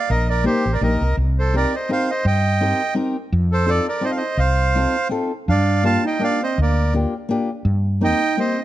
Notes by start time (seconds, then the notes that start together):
Already playing: F5
0.10 A#1 A#4 D#5
0.29 A#4 D5
0.44 A#3 D#4 G4 A#4 C5
0.66 A1
0.73 A#4 D5
0.81 A#1 A#3 D#4 G4 A#4 D#5
1.01 C2
1.17 C2
1.39 A4 C5
1.53 C4 D#4 G4 A#4 D5
1.75 C5 D#5
1.89 C4 D#4 G4 A#4 C5 F5
2.11 C5 D#5
2.25 G2 D#5 G5
2.61 C4 D#4 G4 A#4
2.95 C4 D#4 G4 A#4
3.32 F2
3.52 A4 C5
3.66 C4 D#4 F4 A4 D5
3.88 A#4 D5
4.01 C4 D#4 F4 A4 C5
4.05 D#5
4.11 F5
4.16 C5 D#5
4.37 C2 C5 F5
4.75 C4 D#4 F4 A4
5.09 C4 D#4 F4 A4
5.48 G2 D4 D5 F5
5.83 A#3 D4 F4 G4 F5 A5
6.04 D#4 D#5 G5
6.19 A#3 D4 F4 G4
6.24 D5 F5
6.42 C4 C5 D#5
6.58 D2 A#3 A#4
6.63 D5
6.94 A#3 D4 F4 G4
7.29 A#3 D4 F4 G4
7.65 G2
8.01 A#3 C4 D#4 G4 D#5 G5
8.37 A#3 C4 D#4 G4 C5 D#5